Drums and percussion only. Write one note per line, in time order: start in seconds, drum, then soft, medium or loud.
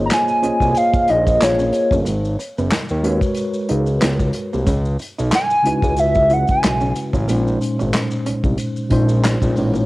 0.10 finger snap medium
0.10 snare loud
0.10 clap medium
0.10 closed hi-hat medium
0.10 maracas medium
0.28 maracas soft
0.44 closed hi-hat medium
0.61 kick medium
0.61 maracas soft
0.75 closed hi-hat medium
0.75 maracas medium
0.94 kick medium
0.94 maracas soft
1.08 closed hi-hat medium
1.27 kick medium
1.27 maracas soft
1.42 finger snap medium
1.42 snare loud
1.42 clap medium
1.42 closed hi-hat medium
1.42 maracas medium
1.59 maracas soft
1.73 closed hi-hat medium
1.73 maracas soft
1.91 kick medium
1.91 maracas soft
2.06 closed hi-hat medium
2.06 maracas medium
2.25 maracas soft
2.40 closed hi-hat medium
2.40 maracas soft
2.58 maracas soft
2.71 finger snap medium
2.71 snare loud
2.71 clap medium
2.71 closed hi-hat medium
2.71 maracas medium
2.89 maracas soft
3.04 closed hi-hat medium
3.21 kick medium
3.21 maracas soft
3.35 closed hi-hat medium
3.35 maracas medium
3.54 maracas soft
3.69 closed hi-hat medium
3.86 maracas soft
4.02 finger snap medium
4.02 snare loud
4.02 clap medium
4.02 closed hi-hat medium
4.02 maracas medium
4.19 kick medium
4.19 maracas soft
4.33 closed hi-hat medium
4.33 maracas soft
4.53 maracas soft
4.66 kick loud
4.66 closed hi-hat medium
4.66 maracas medium
4.85 maracas soft
4.99 closed hi-hat medium
4.99 maracas soft
5.19 maracas soft
5.32 finger snap medium
5.32 snare loud
5.32 clap medium
5.32 closed hi-hat medium
5.32 maracas medium
5.50 maracas soft
5.65 closed hi-hat medium
5.82 kick medium
5.82 maracas soft
5.97 closed hi-hat medium
5.97 maracas medium
6.15 kick medium
6.15 maracas soft
6.30 closed hi-hat medium
6.48 kick medium
6.48 maracas soft
6.64 finger snap medium
6.64 snare loud
6.64 clap medium
6.64 closed hi-hat medium
6.64 maracas medium
6.81 maracas soft
6.96 closed hi-hat medium
6.96 maracas soft
7.13 kick medium
7.13 maracas soft
7.29 closed hi-hat medium
7.29 maracas medium
7.47 maracas soft
7.61 closed hi-hat medium
7.61 maracas soft
7.80 maracas medium
7.93 finger snap medium
7.93 snare loud
7.93 clap medium
7.93 closed hi-hat medium
7.93 maracas medium
8.11 maracas soft
8.26 closed hi-hat medium
8.44 kick medium
8.44 maracas soft
8.58 closed hi-hat medium
8.58 maracas medium
8.76 maracas soft
8.90 kick medium
8.90 closed hi-hat medium
9.09 maracas soft
9.25 finger snap medium
9.25 snare loud
9.25 clap medium
9.25 closed hi-hat medium
9.25 maracas medium
9.42 kick medium
9.42 maracas soft
9.56 open hi-hat soft
9.56 maracas soft
9.75 maracas soft